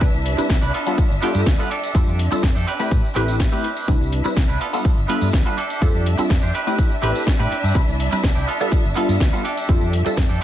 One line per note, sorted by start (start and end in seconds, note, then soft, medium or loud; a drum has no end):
0.00 0.35 G3 medium
0.00 0.35 C4 medium
0.00 3.87 D4 medium
0.00 0.35 D4 medium
0.00 0.35 E4 medium
0.00 0.35 B4 loud
0.00 3.87 E5 medium
0.00 kick loud
0.00 closed hi-hat medium
0.00 tambourine medium
0.14 0.38 C2 medium
0.14 tambourine soft
0.26 open hi-hat loud
0.37 0.51 G3 medium
0.37 0.52 C4 medium
0.37 0.52 D4 medium
0.37 0.52 E4 medium
0.37 0.52 B4 medium
0.37 muted clean electric guitar stroke loud
0.37 closed hi-hat soft
0.37 tambourine medium
0.49 0.57 C2 medium
0.49 muted clean electric guitar stroke soft
0.49 kick loud
0.49 snare loud
0.49 closed hi-hat medium
0.49 tambourine medium
0.62 0.70 C2 medium
0.62 0.73 D4 medium
0.62 0.74 E4 medium
0.62 0.74 B4 loud
0.62 tambourine soft
0.73 1.13 B3 medium
0.73 1.13 F4 medium
0.73 1.13 A4 loud
0.73 open hi-hat medium
0.86 1.09 G3 medium
0.86 1.09 B3 medium
0.86 1.09 D4 medium
0.86 1.09 F4 medium
0.86 1.09 A4 medium
0.86 closed hi-hat soft
0.86 tambourine medium
0.98 muted fingered electric bass stroke soft
0.98 kick loud
0.98 closed hi-hat medium
0.98 tambourine medium
1.11 1.18 G1 medium
1.11 tambourine soft
1.22 1.56 G3 medium
1.22 1.40 B3 loud
1.22 1.56 B3 medium
1.22 1.56 D4 medium
1.22 1.41 F4 loud
1.22 1.56 F4 medium
1.22 1.41 G4 loud
1.22 1.56 A4 loud
1.22 open hi-hat loud
1.34 1.42 G2 medium
1.34 closed hi-hat soft
1.34 tambourine medium
1.46 1.54 D2 medium
1.46 kick loud
1.46 snare loud
1.46 closed hi-hat medium
1.46 tambourine medium
1.58 1.69 G3 medium
1.58 1.69 B3 medium
1.58 1.69 D4 medium
1.58 1.70 F4 medium
1.58 1.69 F4 medium
1.58 1.70 A4 medium
1.58 1.71 B4 medium
1.58 tambourine soft
1.70 2.19 D4 medium
1.70 2.19 G4 medium
1.70 2.19 A4 loud
1.70 open hi-hat loud
1.84 closed hi-hat soft
1.84 tambourine medium
1.95 2.03 F2 medium
1.95 2.28 G3 medium
1.95 2.28 C4 medium
1.95 2.29 D4 medium
1.95 2.29 F4 medium
1.95 2.29 A4 loud
1.95 kick loud
1.95 closed hi-hat medium
1.95 tambourine medium
2.07 2.31 F2 medium
2.07 tambourine soft
2.19 open hi-hat loud
2.31 2.45 G3 medium
2.31 2.45 C4 medium
2.31 2.45 D4 medium
2.31 2.45 F4 medium
2.31 2.45 A4 medium
2.31 muted clean electric guitar stroke loud
2.31 muted fingered electric bass stroke soft
2.31 closed hi-hat soft
2.31 tambourine medium
2.42 2.51 F2 medium
2.42 muted clean electric guitar stroke soft
2.42 kick loud
2.42 snare loud
2.42 closed hi-hat medium
2.55 2.63 F2 medium
2.55 2.66 D4 medium
2.55 2.66 G4 medium
2.55 2.68 A4 loud
2.55 tambourine soft
2.67 3.06 C4 medium
2.67 3.07 G4 medium
2.67 3.07 B4 loud
2.67 open hi-hat medium
2.79 3.02 A3 medium
2.79 3.02 C4 medium
2.79 3.02 E4 medium
2.79 3.02 G4 medium
2.79 3.02 B4 medium
2.79 closed hi-hat soft
2.79 tambourine medium
2.91 2.99 A2 medium
2.91 kick loud
2.91 closed hi-hat medium
2.91 tambourine medium
3.04 tambourine soft
3.15 3.45 A1 medium
3.15 3.49 A3 medium
3.15 3.34 C4 loud
3.15 3.49 C4 medium
3.15 3.50 E4 medium
3.15 3.34 G4 medium
3.15 3.50 G4 medium
3.15 3.50 B4 loud
3.15 3.35 B4 loud
3.15 open hi-hat loud
3.28 closed hi-hat soft
3.28 tambourine medium
3.40 kick loud
3.40 snare loud
3.40 closed hi-hat medium
3.52 3.66 A3 medium
3.52 3.88 C4 medium
3.52 3.66 C4 medium
3.52 3.66 E4 medium
3.52 3.66 G4 medium
3.52 3.88 G4 medium
3.52 3.66 B4 loud
3.52 3.89 B4 medium
3.52 tambourine soft
3.64 open hi-hat medium
3.77 closed hi-hat soft
3.77 tambourine medium
3.88 3.96 C2 medium
3.88 4.22 G3 medium
3.88 4.22 C4 medium
3.88 10.44 D4 medium
3.88 4.22 D4 medium
3.88 4.22 E4 medium
3.88 4.22 B4 loud
3.88 10.44 E5 medium
3.88 kick loud
3.88 closed hi-hat medium
4.01 4.24 C2 medium
4.01 tambourine soft
4.12 open hi-hat loud
4.24 4.39 G3 medium
4.24 4.39 C4 medium
4.24 4.39 D4 medium
4.24 4.39 E4 medium
4.24 4.39 B4 medium
4.24 muted clean electric guitar stroke loud
4.24 closed hi-hat soft
4.24 tambourine medium
4.36 4.44 C2 medium
4.36 muted clean electric guitar stroke soft
4.36 kick loud
4.36 snare loud
4.36 closed hi-hat medium
4.48 4.56 C2 medium
4.48 4.60 D4 medium
4.48 4.60 E4 medium
4.48 4.61 B4 medium
4.48 tambourine soft
4.60 5.00 B3 medium
4.60 5.00 F4 medium
4.60 5.00 A4 loud
4.60 open hi-hat medium
4.73 4.95 G3 medium
4.73 4.96 B3 medium
4.73 4.96 D4 medium
4.73 4.96 F4 medium
4.73 4.96 A4 medium
4.73 closed hi-hat soft
4.73 tambourine medium
4.85 muted fingered electric bass stroke soft
4.85 kick loud
4.85 closed hi-hat medium
4.85 tambourine medium
4.97 5.05 G1 medium
4.97 tambourine soft
5.08 5.43 G3 medium
5.08 5.27 B3 loud
5.08 5.43 B3 medium
5.08 5.43 D4 medium
5.08 5.28 F4 medium
5.08 5.43 F4 medium
5.08 5.43 A4 loud
5.08 5.28 B4 loud
5.08 open hi-hat loud
5.21 5.29 G2 medium
5.21 closed hi-hat soft
5.21 tambourine medium
5.32 5.41 D2 medium
5.32 kick loud
5.32 snare loud
5.32 closed hi-hat medium
5.32 tambourine medium
5.45 5.56 G3 medium
5.45 5.57 B3 medium
5.45 5.56 B3 medium
5.45 5.56 D4 medium
5.45 5.57 F4 medium
5.45 5.56 F4 medium
5.45 5.57 A4 loud
5.45 5.58 B4 medium
5.45 tambourine soft
5.57 6.06 D4 medium
5.57 6.06 G4 medium
5.57 6.06 A4 loud
5.57 open hi-hat medium
5.70 closed hi-hat soft
5.70 tambourine medium
5.82 5.90 F2 medium
5.82 6.15 G3 medium
5.82 6.16 C4 medium
5.82 6.16 D4 medium
5.82 6.16 F4 medium
5.82 6.16 A4 loud
5.82 kick loud
5.82 closed hi-hat medium
5.82 tambourine medium
5.94 6.18 F2 medium
5.94 tambourine soft
6.06 open hi-hat loud
6.18 6.32 G3 medium
6.18 6.32 C4 medium
6.18 6.32 D4 medium
6.18 6.32 F4 medium
6.18 6.32 A4 medium
6.18 muted clean electric guitar stroke loud
6.18 muted fingered electric bass stroke soft
6.18 closed hi-hat medium
6.18 tambourine medium
6.29 6.38 F2 medium
6.29 muted clean electric guitar stroke soft
6.29 kick loud
6.29 snare loud
6.29 closed hi-hat medium
6.29 tambourine medium
6.42 6.50 F2 medium
6.42 6.53 D4 medium
6.42 6.53 G4 medium
6.42 6.55 C5 loud
6.42 tambourine soft
6.54 6.93 C4 medium
6.54 6.93 G4 medium
6.54 6.94 B4 loud
6.54 open hi-hat medium
6.67 6.89 A3 medium
6.67 6.89 C4 medium
6.67 6.89 E4 medium
6.67 6.89 G4 medium
6.67 6.90 B4 medium
6.67 closed hi-hat medium
6.67 tambourine medium
6.79 kick loud
6.79 closed hi-hat medium
6.79 tambourine medium
6.91 tambourine soft
7.02 7.11 A1 loud
7.02 7.36 A3 medium
7.02 7.21 C4 loud
7.02 7.36 C4 medium
7.02 7.36 E4 medium
7.02 7.21 G4 loud
7.02 7.37 G4 medium
7.02 7.37 B4 loud
7.02 7.21 B4 loud
7.02 open hi-hat loud
7.15 closed hi-hat soft
7.15 tambourine medium
7.27 kick loud
7.27 snare loud
7.27 closed hi-hat medium
7.27 tambourine medium
7.38 7.47 A2 medium
7.38 7.53 A3 medium
7.38 7.75 C4 medium
7.38 7.53 C4 medium
7.38 7.53 E4 medium
7.38 7.75 G4 medium
7.38 7.53 G4 medium
7.38 7.53 B4 loud
7.38 7.76 B4 loud
7.38 tambourine soft
7.51 muted fingered electric bass stroke soft
7.51 open hi-hat medium
7.64 7.71 G2 medium
7.64 closed hi-hat soft
7.64 tambourine medium
7.75 8.09 G3 medium
7.75 8.09 C4 medium
7.75 8.09 D4 medium
7.75 8.09 E4 medium
7.75 8.09 B4 loud
7.75 kick loud
7.75 closed hi-hat medium
7.75 tambourine medium
7.88 8.11 C2 medium
7.88 tambourine soft
8.00 open hi-hat loud
8.11 8.26 G3 medium
8.11 8.26 C4 medium
8.11 8.26 D4 medium
8.11 8.26 E4 medium
8.11 8.26 B4 medium
8.11 muted clean electric guitar stroke loud
8.11 closed hi-hat medium
8.11 tambourine medium
8.23 8.31 C2 medium
8.23 muted clean electric guitar stroke soft
8.23 kick loud
8.23 snare loud
8.23 closed hi-hat medium
8.23 tambourine medium
8.35 8.43 C2 medium
8.35 8.46 D4 medium
8.35 8.48 E4 medium
8.35 8.47 G4 loud
8.35 tambourine soft
8.47 8.87 B3 medium
8.47 8.87 F4 medium
8.47 8.87 A4 loud
8.47 open hi-hat medium
8.60 8.83 G3 medium
8.60 8.83 B3 medium
8.60 8.83 D4 medium
8.60 8.83 F4 medium
8.60 8.83 A4 medium
8.60 closed hi-hat medium
8.60 tambourine medium
8.71 muted fingered electric bass stroke soft
8.71 kick loud
8.71 closed hi-hat medium
8.71 tambourine medium
8.85 8.92 G1 medium
8.85 tambourine soft
8.95 9.30 G3 medium
8.95 9.14 B3 loud
8.95 9.30 B3 medium
8.95 9.30 D4 medium
8.95 9.15 F4 loud
8.95 9.30 F4 medium
8.95 9.30 A4 loud
8.95 9.15 A4 loud
8.95 open hi-hat loud
9.09 9.16 G2 medium
9.09 closed hi-hat medium
9.09 tambourine medium
9.20 9.28 D2 loud
9.20 kick loud
9.20 snare loud
9.20 closed hi-hat medium
9.32 9.43 G3 medium
9.32 9.43 B3 medium
9.32 9.43 D4 medium
9.32 9.44 F4 medium
9.32 9.43 F4 medium
9.32 9.44 A4 loud
9.32 tambourine soft
9.44 9.93 D4 medium
9.44 9.93 G4 medium
9.44 9.93 A4 loud
9.44 open hi-hat medium
9.57 closed hi-hat medium
9.57 tambourine medium
9.69 9.77 F2 medium
9.69 10.03 G3 medium
9.69 10.03 C4 medium
9.69 10.03 D4 medium
9.69 10.03 F4 medium
9.69 10.03 A4 loud
9.69 kick loud
9.69 closed hi-hat medium
9.69 tambourine medium
9.81 10.05 F2 medium
9.81 tambourine soft
9.93 open hi-hat loud
10.05 10.19 G3 medium
10.05 10.19 C4 medium
10.05 10.19 D4 medium
10.05 10.20 F4 medium
10.05 10.20 A4 medium
10.05 muted clean electric guitar stroke loud
10.05 muted fingered electric bass stroke soft
10.05 closed hi-hat medium
10.05 tambourine medium
10.16 10.25 F2 medium
10.16 muted clean electric guitar stroke soft
10.16 kick loud
10.16 snare loud
10.16 closed hi-hat medium
10.29 10.37 F2 medium
10.29 10.40 D4 medium
10.29 10.40 G4 medium
10.29 10.42 A4 loud
10.29 tambourine soft
10.40 10.44 C4 medium